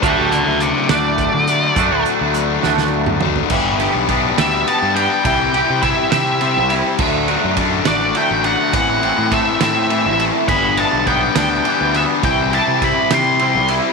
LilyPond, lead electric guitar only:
\new Staff \with { instrumentName = "Lead electric guitar" } { \time 6/8 \key g \major \tempo 4. = 69 <d'' b''>8 <fis'' a''>8 <c'' e''>8 d''4.~ | d''8 r2 r8 | r4. e''8 a''8 g''8 | g''4 e''8 e''4 r8 |
r4. d''8 g''8 fis''8 | fis''4 e''8 e''4 r8 | b''8 a''8 g''8 g''4 e''8 | g''8 a''8 b''8 c'''4 r8 | }